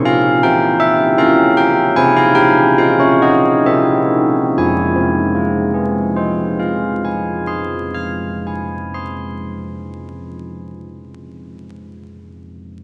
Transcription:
church bells
Already playing: C4
0.05 F5
0.43 C4 E4 G5
0.80 E5
1.18 C#4 F4 A#4 F5
1.57 G5
1.96 C4 G#5
2.16 F5
2.35 G5
2.78 F4 C5 F5
3.00 C#5
3.22 D#5
3.66 C4 G4 A#4 E5
4.58 F3 G#5
4.96 C4
5.35 F4
5.74 G#4
6.16 C5
6.60 F5
7.05 G#5
7.47 C6
7.94 F6
8.47 G#5
8.94 C6

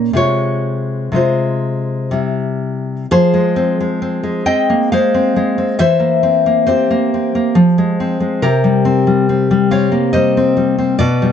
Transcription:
nylon-string guitar
Already playing: A#2 A#3 C#4 C#5
0.13 C3 G#3 F4 C#5
1.12 C3 G#3 F4
1.16 C5
2.11 C3 G3 E4
3.11 F3 G#4 C5
3.34 G#3
3.56 C4
3.80 G#3
4.02 C4
4.23 G#3
4.46 C4 D#5 G5
4.70 A#3
4.92 G#3 C5 F5
5.14 C4
5.36 G#3
5.58 C4
5.79 E3 C5 E5
6.00 A#3
6.23 C4
6.46 A#3
6.67 C4 G4 C5
6.90 A#3
7.14 C4
7.35 A#3
7.55 F3
7.78 G#3
8.00 C4
8.20 G#3
8.42 C3 G4 A#4
8.64 G3
8.85 C4
9.07 G3
9.29 C4
9.51 G3
9.71 C4 C#5 F5
9.92 A#3
10.13 G3 C5 D#5
10.37 C4
10.57 G3
10.78 C4
10.99 B2 B4 D5
11.22 G3

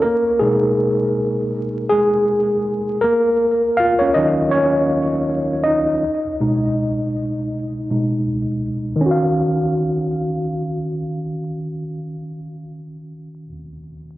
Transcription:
tine electric piano
0.02 A#3 A#4
0.39 B2 G#3 D#4 G#4
1.90 G#3 G#4
3.01 A#3 A#4
3.77 F4 F5
3.99 C#4 C#5
4.14 D#3 F#3 C#4 D#4 D#5
4.51 C#4 C#5
5.64 D#4 D#5
6.40 B2 G#3 D#4
7.90 B2 G#3 D#4
8.96 D#3
9.01 C#4
9.06 F#4
9.11 F5

